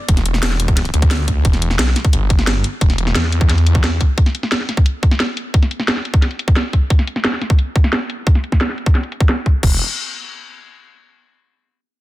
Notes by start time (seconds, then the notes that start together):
0.09 E1, kick, closed hi-hat
0.17 snare, closed hi-hat
0.26 closed hi-hat
0.34 snare
0.43 E1, snare, closed hi-hat
0.51 snare
0.60 closed hi-hat
0.68 kick, closed hi-hat
0.77 snare, closed hi-hat
0.85 closed hi-hat
0.94 D2, closed hi-hat
1.02 kick, closed hi-hat
1.11 snare, closed hi-hat
1.28 kick, closed hi-hat
1.45 E1, kick, closed hi-hat
1.53 snare, closed hi-hat
1.62 closed hi-hat
1.71 snare
1.79 B1, snare, closed hi-hat
1.88 snare
1.96 snare, closed hi-hat
2.05 kick, closed hi-hat
2.13 G1, closed hi-hat
2.30 kick, closed hi-hat
2.39 snare, closed hi-hat
2.47 snare, closed hi-hat
2.64 closed hi-hat
2.81 E1, kick, closed hi-hat
2.90 snare, closed hi-hat
2.98 closed hi-hat
3.07 snare
3.15 E2, snare, closed hi-hat
3.24 snare
3.32 closed hi-hat
3.41 kick, closed hi-hat
3.49 snare, closed hi-hat
3.58 closed hi-hat
3.67 closed hi-hat
3.75 kick, closed hi-hat
3.84 snare, closed hi-hat
4.01 kick, closed hi-hat
4.18 kick, closed hi-hat
4.26 snare, closed hi-hat
4.35 closed hi-hat
4.43 snare
4.52 snare, closed hi-hat
4.60 snare
4.69 snare, closed hi-hat
4.77 kick, closed hi-hat
4.86 closed hi-hat
5.03 kick, closed hi-hat
5.11 snare, closed hi-hat
5.20 snare, closed hi-hat
5.37 closed hi-hat
5.54 kick, closed hi-hat
5.63 snare, closed hi-hat
5.71 closed hi-hat
5.80 snare
5.88 snare, closed hi-hat
5.97 snare
6.05 closed hi-hat
6.14 kick, closed hi-hat
6.22 snare, closed hi-hat
6.31 closed hi-hat
6.39 closed hi-hat
6.48 kick, closed hi-hat
6.56 snare, closed hi-hat
6.73 kick, closed hi-hat
6.90 kick, closed hi-hat
6.99 snare, closed hi-hat
7.07 closed hi-hat
7.16 snare
7.25 snare, closed hi-hat
7.33 snare
7.42 snare, closed hi-hat
7.50 kick, closed hi-hat
7.59 closed hi-hat
7.76 kick, closed hi-hat
7.84 snare, closed hi-hat
7.93 snare, closed hi-hat
8.10 closed hi-hat
8.27 kick, closed hi-hat
8.35 snare, closed hi-hat
8.44 closed hi-hat
8.52 kick, snare
8.61 snare, closed hi-hat
8.69 snare
8.78 closed hi-hat
8.86 kick, closed hi-hat
8.95 snare, closed hi-hat
9.03 closed hi-hat
9.12 closed hi-hat
9.20 kick, closed hi-hat
9.29 snare, closed hi-hat
9.46 kick, closed hi-hat
9.63 E1, kick, crash